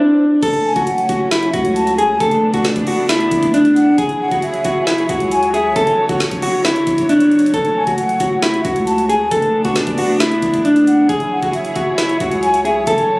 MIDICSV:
0, 0, Header, 1, 7, 480
1, 0, Start_track
1, 0, Key_signature, 3, "minor"
1, 0, Tempo, 444444
1, 460, Time_signature, 4, 2, 24, 8
1, 14252, End_track
2, 0, Start_track
2, 0, Title_t, "Flute"
2, 0, Program_c, 0, 73
2, 699, Note_on_c, 0, 80, 83
2, 927, Note_off_c, 0, 80, 0
2, 942, Note_on_c, 0, 78, 86
2, 1392, Note_off_c, 0, 78, 0
2, 1899, Note_on_c, 0, 81, 95
2, 2127, Note_off_c, 0, 81, 0
2, 2139, Note_on_c, 0, 80, 90
2, 2367, Note_off_c, 0, 80, 0
2, 4061, Note_on_c, 0, 78, 85
2, 4288, Note_off_c, 0, 78, 0
2, 4541, Note_on_c, 0, 78, 89
2, 4768, Note_off_c, 0, 78, 0
2, 4779, Note_on_c, 0, 76, 94
2, 5230, Note_off_c, 0, 76, 0
2, 5739, Note_on_c, 0, 80, 96
2, 5967, Note_off_c, 0, 80, 0
2, 5979, Note_on_c, 0, 76, 93
2, 6208, Note_off_c, 0, 76, 0
2, 8382, Note_on_c, 0, 80, 83
2, 8609, Note_off_c, 0, 80, 0
2, 8622, Note_on_c, 0, 78, 83
2, 9072, Note_off_c, 0, 78, 0
2, 9578, Note_on_c, 0, 81, 95
2, 9807, Note_off_c, 0, 81, 0
2, 9819, Note_on_c, 0, 80, 87
2, 10047, Note_off_c, 0, 80, 0
2, 11740, Note_on_c, 0, 78, 86
2, 11968, Note_off_c, 0, 78, 0
2, 12219, Note_on_c, 0, 78, 87
2, 12448, Note_off_c, 0, 78, 0
2, 12458, Note_on_c, 0, 76, 98
2, 12910, Note_off_c, 0, 76, 0
2, 13419, Note_on_c, 0, 80, 97
2, 13648, Note_off_c, 0, 80, 0
2, 13659, Note_on_c, 0, 76, 91
2, 13888, Note_off_c, 0, 76, 0
2, 14252, End_track
3, 0, Start_track
3, 0, Title_t, "Clean electric guitar"
3, 0, Program_c, 1, 27
3, 0, Note_on_c, 1, 62, 89
3, 431, Note_off_c, 1, 62, 0
3, 462, Note_on_c, 1, 69, 114
3, 799, Note_off_c, 1, 69, 0
3, 823, Note_on_c, 1, 66, 71
3, 929, Note_off_c, 1, 66, 0
3, 1181, Note_on_c, 1, 66, 75
3, 1397, Note_off_c, 1, 66, 0
3, 1421, Note_on_c, 1, 64, 90
3, 1636, Note_off_c, 1, 64, 0
3, 1657, Note_on_c, 1, 66, 84
3, 2110, Note_off_c, 1, 66, 0
3, 2142, Note_on_c, 1, 68, 84
3, 2357, Note_off_c, 1, 68, 0
3, 2380, Note_on_c, 1, 69, 101
3, 2718, Note_off_c, 1, 69, 0
3, 2743, Note_on_c, 1, 66, 81
3, 2850, Note_off_c, 1, 66, 0
3, 3106, Note_on_c, 1, 66, 75
3, 3319, Note_off_c, 1, 66, 0
3, 3340, Note_on_c, 1, 64, 87
3, 3791, Note_off_c, 1, 64, 0
3, 3824, Note_on_c, 1, 62, 106
3, 4273, Note_off_c, 1, 62, 0
3, 4299, Note_on_c, 1, 68, 101
3, 4638, Note_off_c, 1, 68, 0
3, 4664, Note_on_c, 1, 66, 75
3, 4770, Note_off_c, 1, 66, 0
3, 5022, Note_on_c, 1, 66, 84
3, 5237, Note_off_c, 1, 66, 0
3, 5261, Note_on_c, 1, 64, 88
3, 5476, Note_off_c, 1, 64, 0
3, 5505, Note_on_c, 1, 66, 72
3, 5954, Note_off_c, 1, 66, 0
3, 5981, Note_on_c, 1, 68, 82
3, 6196, Note_off_c, 1, 68, 0
3, 6222, Note_on_c, 1, 69, 100
3, 6559, Note_off_c, 1, 69, 0
3, 6580, Note_on_c, 1, 66, 74
3, 6688, Note_off_c, 1, 66, 0
3, 6942, Note_on_c, 1, 66, 80
3, 7157, Note_off_c, 1, 66, 0
3, 7186, Note_on_c, 1, 64, 83
3, 7634, Note_off_c, 1, 64, 0
3, 7664, Note_on_c, 1, 62, 94
3, 8113, Note_off_c, 1, 62, 0
3, 8142, Note_on_c, 1, 69, 116
3, 8479, Note_off_c, 1, 69, 0
3, 8504, Note_on_c, 1, 66, 69
3, 8610, Note_off_c, 1, 66, 0
3, 8861, Note_on_c, 1, 66, 80
3, 9077, Note_off_c, 1, 66, 0
3, 9102, Note_on_c, 1, 64, 94
3, 9317, Note_off_c, 1, 64, 0
3, 9338, Note_on_c, 1, 66, 83
3, 9790, Note_off_c, 1, 66, 0
3, 9820, Note_on_c, 1, 68, 79
3, 10036, Note_off_c, 1, 68, 0
3, 10060, Note_on_c, 1, 69, 102
3, 10398, Note_off_c, 1, 69, 0
3, 10423, Note_on_c, 1, 66, 79
3, 10529, Note_off_c, 1, 66, 0
3, 10783, Note_on_c, 1, 66, 78
3, 10998, Note_off_c, 1, 66, 0
3, 11019, Note_on_c, 1, 64, 88
3, 11471, Note_off_c, 1, 64, 0
3, 11502, Note_on_c, 1, 62, 106
3, 11952, Note_off_c, 1, 62, 0
3, 11978, Note_on_c, 1, 68, 108
3, 12317, Note_off_c, 1, 68, 0
3, 12344, Note_on_c, 1, 66, 75
3, 12450, Note_off_c, 1, 66, 0
3, 12701, Note_on_c, 1, 66, 79
3, 12916, Note_off_c, 1, 66, 0
3, 12941, Note_on_c, 1, 64, 86
3, 13156, Note_off_c, 1, 64, 0
3, 13186, Note_on_c, 1, 66, 69
3, 13634, Note_off_c, 1, 66, 0
3, 13660, Note_on_c, 1, 68, 80
3, 13876, Note_off_c, 1, 68, 0
3, 13903, Note_on_c, 1, 69, 98
3, 14240, Note_off_c, 1, 69, 0
3, 14252, End_track
4, 0, Start_track
4, 0, Title_t, "String section"
4, 0, Program_c, 2, 48
4, 460, Note_on_c, 2, 54, 77
4, 460, Note_on_c, 2, 57, 72
4, 460, Note_on_c, 2, 61, 87
4, 2360, Note_off_c, 2, 61, 0
4, 2361, Note_off_c, 2, 54, 0
4, 2380, Note_on_c, 2, 59, 72
4, 2380, Note_on_c, 2, 62, 88
4, 4261, Note_off_c, 2, 57, 0
4, 4281, Note_off_c, 2, 59, 0
4, 4281, Note_off_c, 2, 62, 0
4, 4300, Note_on_c, 2, 54, 80
4, 4300, Note_on_c, 2, 64, 74
4, 4300, Note_on_c, 2, 73, 75
4, 4301, Note_on_c, 2, 68, 85
4, 6201, Note_off_c, 2, 64, 0
4, 6201, Note_off_c, 2, 68, 0
4, 6220, Note_on_c, 2, 50, 81
4, 8121, Note_off_c, 2, 50, 0
4, 8140, Note_on_c, 2, 57, 73
4, 10017, Note_off_c, 2, 54, 0
4, 10017, Note_off_c, 2, 73, 0
4, 10060, Note_on_c, 2, 59, 75
4, 10060, Note_on_c, 2, 62, 86
4, 11942, Note_off_c, 2, 57, 0
4, 11961, Note_off_c, 2, 59, 0
4, 11961, Note_off_c, 2, 62, 0
4, 11979, Note_on_c, 2, 64, 72
4, 11979, Note_on_c, 2, 68, 87
4, 11980, Note_on_c, 2, 54, 81
4, 11980, Note_on_c, 2, 73, 74
4, 13880, Note_off_c, 2, 64, 0
4, 13880, Note_off_c, 2, 68, 0
4, 13899, Note_on_c, 2, 50, 76
4, 14252, Note_off_c, 2, 50, 0
4, 14252, Note_off_c, 2, 54, 0
4, 14252, Note_off_c, 2, 73, 0
4, 14252, End_track
5, 0, Start_track
5, 0, Title_t, "808-style bass"
5, 0, Program_c, 3, 38
5, 459, Note_on_c, 3, 30, 109
5, 805, Note_off_c, 3, 30, 0
5, 820, Note_on_c, 3, 30, 101
5, 1165, Note_off_c, 3, 30, 0
5, 1179, Note_on_c, 3, 30, 107
5, 1640, Note_off_c, 3, 30, 0
5, 1661, Note_on_c, 3, 37, 110
5, 2351, Note_off_c, 3, 37, 0
5, 2380, Note_on_c, 3, 30, 114
5, 2725, Note_off_c, 3, 30, 0
5, 2740, Note_on_c, 3, 28, 101
5, 2970, Note_off_c, 3, 28, 0
5, 2980, Note_on_c, 3, 30, 104
5, 3556, Note_off_c, 3, 30, 0
5, 3581, Note_on_c, 3, 30, 107
5, 4272, Note_off_c, 3, 30, 0
5, 4300, Note_on_c, 3, 30, 111
5, 4646, Note_off_c, 3, 30, 0
5, 4660, Note_on_c, 3, 30, 102
5, 5005, Note_off_c, 3, 30, 0
5, 5019, Note_on_c, 3, 30, 109
5, 5480, Note_off_c, 3, 30, 0
5, 5501, Note_on_c, 3, 37, 105
5, 6191, Note_off_c, 3, 37, 0
5, 6220, Note_on_c, 3, 30, 109
5, 6566, Note_off_c, 3, 30, 0
5, 6581, Note_on_c, 3, 30, 102
5, 6811, Note_off_c, 3, 30, 0
5, 6820, Note_on_c, 3, 30, 103
5, 7396, Note_off_c, 3, 30, 0
5, 7420, Note_on_c, 3, 30, 107
5, 8111, Note_off_c, 3, 30, 0
5, 8140, Note_on_c, 3, 30, 110
5, 8485, Note_off_c, 3, 30, 0
5, 8500, Note_on_c, 3, 30, 103
5, 8845, Note_off_c, 3, 30, 0
5, 8859, Note_on_c, 3, 30, 107
5, 9320, Note_off_c, 3, 30, 0
5, 9340, Note_on_c, 3, 37, 106
5, 10031, Note_off_c, 3, 37, 0
5, 10059, Note_on_c, 3, 30, 112
5, 10405, Note_off_c, 3, 30, 0
5, 10420, Note_on_c, 3, 28, 101
5, 10650, Note_off_c, 3, 28, 0
5, 10659, Note_on_c, 3, 30, 101
5, 11236, Note_off_c, 3, 30, 0
5, 11260, Note_on_c, 3, 30, 106
5, 11951, Note_off_c, 3, 30, 0
5, 11980, Note_on_c, 3, 30, 111
5, 12325, Note_off_c, 3, 30, 0
5, 12340, Note_on_c, 3, 30, 102
5, 12685, Note_off_c, 3, 30, 0
5, 12700, Note_on_c, 3, 30, 109
5, 13160, Note_off_c, 3, 30, 0
5, 13180, Note_on_c, 3, 37, 105
5, 13871, Note_off_c, 3, 37, 0
5, 13900, Note_on_c, 3, 30, 113
5, 14246, Note_off_c, 3, 30, 0
5, 14252, End_track
6, 0, Start_track
6, 0, Title_t, "Swell"
6, 0, Program_c, 4, 103
6, 0, Note_on_c, 4, 60, 82
6, 460, Note_off_c, 4, 60, 0
6, 14252, End_track
7, 0, Start_track
7, 0, Title_t, "Drums"
7, 460, Note_on_c, 9, 36, 120
7, 460, Note_on_c, 9, 42, 91
7, 460, Note_on_c, 9, 49, 102
7, 568, Note_off_c, 9, 36, 0
7, 568, Note_off_c, 9, 42, 0
7, 568, Note_off_c, 9, 49, 0
7, 578, Note_on_c, 9, 42, 53
7, 686, Note_off_c, 9, 42, 0
7, 819, Note_on_c, 9, 42, 58
7, 820, Note_on_c, 9, 36, 97
7, 927, Note_off_c, 9, 42, 0
7, 928, Note_off_c, 9, 36, 0
7, 938, Note_on_c, 9, 42, 80
7, 1046, Note_off_c, 9, 42, 0
7, 1059, Note_on_c, 9, 42, 60
7, 1167, Note_off_c, 9, 42, 0
7, 1177, Note_on_c, 9, 42, 90
7, 1180, Note_on_c, 9, 36, 93
7, 1285, Note_off_c, 9, 42, 0
7, 1288, Note_off_c, 9, 36, 0
7, 1419, Note_on_c, 9, 38, 116
7, 1420, Note_on_c, 9, 42, 80
7, 1527, Note_off_c, 9, 38, 0
7, 1528, Note_off_c, 9, 42, 0
7, 1540, Note_on_c, 9, 42, 50
7, 1648, Note_off_c, 9, 42, 0
7, 1658, Note_on_c, 9, 42, 83
7, 1660, Note_on_c, 9, 36, 99
7, 1766, Note_off_c, 9, 42, 0
7, 1768, Note_off_c, 9, 36, 0
7, 1779, Note_on_c, 9, 42, 62
7, 1887, Note_off_c, 9, 42, 0
7, 1901, Note_on_c, 9, 42, 83
7, 2009, Note_off_c, 9, 42, 0
7, 2021, Note_on_c, 9, 42, 65
7, 2129, Note_off_c, 9, 42, 0
7, 2144, Note_on_c, 9, 42, 81
7, 2252, Note_off_c, 9, 42, 0
7, 2380, Note_on_c, 9, 36, 124
7, 2380, Note_on_c, 9, 42, 94
7, 2488, Note_off_c, 9, 36, 0
7, 2488, Note_off_c, 9, 42, 0
7, 2498, Note_on_c, 9, 42, 53
7, 2606, Note_off_c, 9, 42, 0
7, 2739, Note_on_c, 9, 42, 57
7, 2740, Note_on_c, 9, 36, 97
7, 2847, Note_off_c, 9, 42, 0
7, 2848, Note_off_c, 9, 36, 0
7, 2857, Note_on_c, 9, 42, 81
7, 2859, Note_on_c, 9, 38, 104
7, 2965, Note_off_c, 9, 42, 0
7, 2967, Note_off_c, 9, 38, 0
7, 2979, Note_on_c, 9, 42, 60
7, 2980, Note_on_c, 9, 36, 98
7, 3087, Note_off_c, 9, 42, 0
7, 3088, Note_off_c, 9, 36, 0
7, 3096, Note_on_c, 9, 46, 96
7, 3204, Note_off_c, 9, 46, 0
7, 3339, Note_on_c, 9, 38, 112
7, 3341, Note_on_c, 9, 42, 81
7, 3447, Note_off_c, 9, 38, 0
7, 3449, Note_off_c, 9, 42, 0
7, 3461, Note_on_c, 9, 42, 48
7, 3569, Note_off_c, 9, 42, 0
7, 3579, Note_on_c, 9, 42, 80
7, 3581, Note_on_c, 9, 36, 94
7, 3687, Note_off_c, 9, 42, 0
7, 3689, Note_off_c, 9, 36, 0
7, 3700, Note_on_c, 9, 36, 87
7, 3701, Note_on_c, 9, 42, 63
7, 3808, Note_off_c, 9, 36, 0
7, 3809, Note_off_c, 9, 42, 0
7, 3822, Note_on_c, 9, 42, 86
7, 3930, Note_off_c, 9, 42, 0
7, 3942, Note_on_c, 9, 42, 64
7, 4050, Note_off_c, 9, 42, 0
7, 4065, Note_on_c, 9, 42, 81
7, 4173, Note_off_c, 9, 42, 0
7, 4300, Note_on_c, 9, 36, 124
7, 4300, Note_on_c, 9, 42, 91
7, 4408, Note_off_c, 9, 36, 0
7, 4408, Note_off_c, 9, 42, 0
7, 4418, Note_on_c, 9, 42, 54
7, 4526, Note_off_c, 9, 42, 0
7, 4659, Note_on_c, 9, 42, 58
7, 4660, Note_on_c, 9, 36, 96
7, 4767, Note_off_c, 9, 42, 0
7, 4768, Note_off_c, 9, 36, 0
7, 4778, Note_on_c, 9, 42, 78
7, 4886, Note_off_c, 9, 42, 0
7, 4899, Note_on_c, 9, 42, 61
7, 5007, Note_off_c, 9, 42, 0
7, 5016, Note_on_c, 9, 42, 90
7, 5020, Note_on_c, 9, 36, 95
7, 5124, Note_off_c, 9, 42, 0
7, 5128, Note_off_c, 9, 36, 0
7, 5259, Note_on_c, 9, 38, 109
7, 5260, Note_on_c, 9, 42, 80
7, 5367, Note_off_c, 9, 38, 0
7, 5368, Note_off_c, 9, 42, 0
7, 5380, Note_on_c, 9, 42, 50
7, 5488, Note_off_c, 9, 42, 0
7, 5499, Note_on_c, 9, 42, 83
7, 5501, Note_on_c, 9, 36, 96
7, 5607, Note_off_c, 9, 42, 0
7, 5609, Note_off_c, 9, 36, 0
7, 5619, Note_on_c, 9, 42, 62
7, 5727, Note_off_c, 9, 42, 0
7, 5740, Note_on_c, 9, 42, 83
7, 5848, Note_off_c, 9, 42, 0
7, 5861, Note_on_c, 9, 42, 65
7, 5969, Note_off_c, 9, 42, 0
7, 5984, Note_on_c, 9, 42, 79
7, 6092, Note_off_c, 9, 42, 0
7, 6220, Note_on_c, 9, 36, 118
7, 6220, Note_on_c, 9, 42, 93
7, 6328, Note_off_c, 9, 36, 0
7, 6328, Note_off_c, 9, 42, 0
7, 6339, Note_on_c, 9, 42, 54
7, 6447, Note_off_c, 9, 42, 0
7, 6579, Note_on_c, 9, 42, 58
7, 6580, Note_on_c, 9, 36, 94
7, 6687, Note_off_c, 9, 42, 0
7, 6688, Note_off_c, 9, 36, 0
7, 6698, Note_on_c, 9, 42, 78
7, 6700, Note_on_c, 9, 38, 102
7, 6806, Note_off_c, 9, 42, 0
7, 6808, Note_off_c, 9, 38, 0
7, 6819, Note_on_c, 9, 42, 60
7, 6820, Note_on_c, 9, 36, 101
7, 6927, Note_off_c, 9, 42, 0
7, 6928, Note_off_c, 9, 36, 0
7, 6937, Note_on_c, 9, 46, 93
7, 7045, Note_off_c, 9, 46, 0
7, 7179, Note_on_c, 9, 38, 112
7, 7180, Note_on_c, 9, 42, 80
7, 7287, Note_off_c, 9, 38, 0
7, 7288, Note_off_c, 9, 42, 0
7, 7300, Note_on_c, 9, 42, 52
7, 7408, Note_off_c, 9, 42, 0
7, 7418, Note_on_c, 9, 42, 79
7, 7420, Note_on_c, 9, 36, 97
7, 7526, Note_off_c, 9, 42, 0
7, 7528, Note_off_c, 9, 36, 0
7, 7539, Note_on_c, 9, 42, 60
7, 7540, Note_on_c, 9, 36, 85
7, 7647, Note_off_c, 9, 42, 0
7, 7648, Note_off_c, 9, 36, 0
7, 7660, Note_on_c, 9, 42, 82
7, 7768, Note_off_c, 9, 42, 0
7, 7781, Note_on_c, 9, 42, 67
7, 7889, Note_off_c, 9, 42, 0
7, 7900, Note_on_c, 9, 42, 50
7, 7980, Note_off_c, 9, 42, 0
7, 7980, Note_on_c, 9, 42, 66
7, 8060, Note_off_c, 9, 42, 0
7, 8060, Note_on_c, 9, 42, 87
7, 8140, Note_off_c, 9, 42, 0
7, 8140, Note_on_c, 9, 36, 123
7, 8140, Note_on_c, 9, 42, 91
7, 8248, Note_off_c, 9, 36, 0
7, 8248, Note_off_c, 9, 42, 0
7, 8258, Note_on_c, 9, 42, 53
7, 8366, Note_off_c, 9, 42, 0
7, 8499, Note_on_c, 9, 42, 59
7, 8500, Note_on_c, 9, 36, 95
7, 8607, Note_off_c, 9, 42, 0
7, 8608, Note_off_c, 9, 36, 0
7, 8617, Note_on_c, 9, 42, 80
7, 8725, Note_off_c, 9, 42, 0
7, 8739, Note_on_c, 9, 42, 61
7, 8847, Note_off_c, 9, 42, 0
7, 8856, Note_on_c, 9, 42, 89
7, 8859, Note_on_c, 9, 36, 95
7, 8964, Note_off_c, 9, 42, 0
7, 8967, Note_off_c, 9, 36, 0
7, 9099, Note_on_c, 9, 38, 118
7, 9100, Note_on_c, 9, 42, 79
7, 9207, Note_off_c, 9, 38, 0
7, 9208, Note_off_c, 9, 42, 0
7, 9221, Note_on_c, 9, 42, 51
7, 9329, Note_off_c, 9, 42, 0
7, 9338, Note_on_c, 9, 42, 82
7, 9340, Note_on_c, 9, 36, 96
7, 9446, Note_off_c, 9, 42, 0
7, 9448, Note_off_c, 9, 36, 0
7, 9459, Note_on_c, 9, 42, 62
7, 9567, Note_off_c, 9, 42, 0
7, 9581, Note_on_c, 9, 42, 84
7, 9689, Note_off_c, 9, 42, 0
7, 9700, Note_on_c, 9, 42, 67
7, 9808, Note_off_c, 9, 42, 0
7, 9823, Note_on_c, 9, 42, 80
7, 9931, Note_off_c, 9, 42, 0
7, 10059, Note_on_c, 9, 36, 123
7, 10059, Note_on_c, 9, 42, 93
7, 10167, Note_off_c, 9, 36, 0
7, 10167, Note_off_c, 9, 42, 0
7, 10177, Note_on_c, 9, 42, 54
7, 10285, Note_off_c, 9, 42, 0
7, 10418, Note_on_c, 9, 42, 57
7, 10420, Note_on_c, 9, 36, 98
7, 10526, Note_off_c, 9, 42, 0
7, 10528, Note_off_c, 9, 36, 0
7, 10536, Note_on_c, 9, 42, 80
7, 10538, Note_on_c, 9, 38, 106
7, 10644, Note_off_c, 9, 42, 0
7, 10646, Note_off_c, 9, 38, 0
7, 10658, Note_on_c, 9, 42, 61
7, 10660, Note_on_c, 9, 36, 99
7, 10766, Note_off_c, 9, 42, 0
7, 10768, Note_off_c, 9, 36, 0
7, 10775, Note_on_c, 9, 46, 95
7, 10883, Note_off_c, 9, 46, 0
7, 11019, Note_on_c, 9, 38, 115
7, 11020, Note_on_c, 9, 42, 81
7, 11127, Note_off_c, 9, 38, 0
7, 11128, Note_off_c, 9, 42, 0
7, 11140, Note_on_c, 9, 42, 51
7, 11248, Note_off_c, 9, 42, 0
7, 11258, Note_on_c, 9, 42, 82
7, 11260, Note_on_c, 9, 36, 93
7, 11366, Note_off_c, 9, 42, 0
7, 11368, Note_off_c, 9, 36, 0
7, 11379, Note_on_c, 9, 42, 63
7, 11380, Note_on_c, 9, 36, 84
7, 11487, Note_off_c, 9, 42, 0
7, 11488, Note_off_c, 9, 36, 0
7, 11501, Note_on_c, 9, 42, 86
7, 11609, Note_off_c, 9, 42, 0
7, 11621, Note_on_c, 9, 42, 65
7, 11729, Note_off_c, 9, 42, 0
7, 11743, Note_on_c, 9, 42, 82
7, 11851, Note_off_c, 9, 42, 0
7, 11979, Note_on_c, 9, 42, 90
7, 11980, Note_on_c, 9, 36, 121
7, 12087, Note_off_c, 9, 42, 0
7, 12088, Note_off_c, 9, 36, 0
7, 12098, Note_on_c, 9, 42, 54
7, 12206, Note_off_c, 9, 42, 0
7, 12339, Note_on_c, 9, 42, 57
7, 12340, Note_on_c, 9, 36, 97
7, 12447, Note_off_c, 9, 42, 0
7, 12448, Note_off_c, 9, 36, 0
7, 12457, Note_on_c, 9, 42, 78
7, 12565, Note_off_c, 9, 42, 0
7, 12578, Note_on_c, 9, 42, 62
7, 12686, Note_off_c, 9, 42, 0
7, 12696, Note_on_c, 9, 42, 89
7, 12699, Note_on_c, 9, 36, 95
7, 12804, Note_off_c, 9, 42, 0
7, 12807, Note_off_c, 9, 36, 0
7, 12939, Note_on_c, 9, 38, 112
7, 12940, Note_on_c, 9, 42, 81
7, 13047, Note_off_c, 9, 38, 0
7, 13048, Note_off_c, 9, 42, 0
7, 13060, Note_on_c, 9, 42, 51
7, 13168, Note_off_c, 9, 42, 0
7, 13178, Note_on_c, 9, 42, 80
7, 13180, Note_on_c, 9, 36, 92
7, 13286, Note_off_c, 9, 42, 0
7, 13288, Note_off_c, 9, 36, 0
7, 13300, Note_on_c, 9, 42, 60
7, 13408, Note_off_c, 9, 42, 0
7, 13421, Note_on_c, 9, 42, 83
7, 13529, Note_off_c, 9, 42, 0
7, 13541, Note_on_c, 9, 42, 66
7, 13649, Note_off_c, 9, 42, 0
7, 13664, Note_on_c, 9, 42, 80
7, 13772, Note_off_c, 9, 42, 0
7, 13900, Note_on_c, 9, 36, 121
7, 13900, Note_on_c, 9, 42, 93
7, 14008, Note_off_c, 9, 36, 0
7, 14008, Note_off_c, 9, 42, 0
7, 14018, Note_on_c, 9, 42, 54
7, 14126, Note_off_c, 9, 42, 0
7, 14252, End_track
0, 0, End_of_file